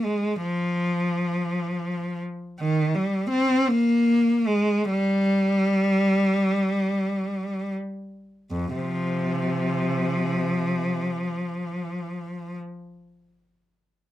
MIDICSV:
0, 0, Header, 1, 2, 480
1, 0, Start_track
1, 0, Key_signature, -4, "minor"
1, 0, Tempo, 729927
1, 269, Time_signature, 6, 3, 24, 8
1, 2666, Tempo, 841515
1, 3146, Tempo, 930233
1, 3626, Tempo, 1134216
1, 4106, Tempo, 1550388
1, 4586, Tempo, 1171875
1, 5546, Tempo, 1119403
1, 6944, End_track
2, 0, Start_track
2, 0, Title_t, "Cello"
2, 0, Program_c, 0, 42
2, 30, Note_on_c, 0, 56, 44
2, 271, Note_off_c, 0, 56, 0
2, 274, Note_on_c, 0, 53, 54
2, 1451, Note_off_c, 0, 53, 0
2, 1712, Note_on_c, 0, 51, 55
2, 1927, Note_off_c, 0, 51, 0
2, 1939, Note_on_c, 0, 55, 49
2, 2166, Note_on_c, 0, 60, 63
2, 2171, Note_off_c, 0, 55, 0
2, 2403, Note_off_c, 0, 60, 0
2, 2419, Note_on_c, 0, 58, 66
2, 2906, Note_off_c, 0, 58, 0
2, 2906, Note_on_c, 0, 56, 57
2, 3148, Note_off_c, 0, 56, 0
2, 3150, Note_on_c, 0, 55, 67
2, 4346, Note_off_c, 0, 55, 0
2, 4586, Note_on_c, 0, 41, 39
2, 4680, Note_on_c, 0, 53, 40
2, 4684, Note_on_c, 0, 48, 33
2, 4685, Note_off_c, 0, 41, 0
2, 5629, Note_off_c, 0, 48, 0
2, 6283, Note_off_c, 0, 53, 0
2, 6944, End_track
0, 0, End_of_file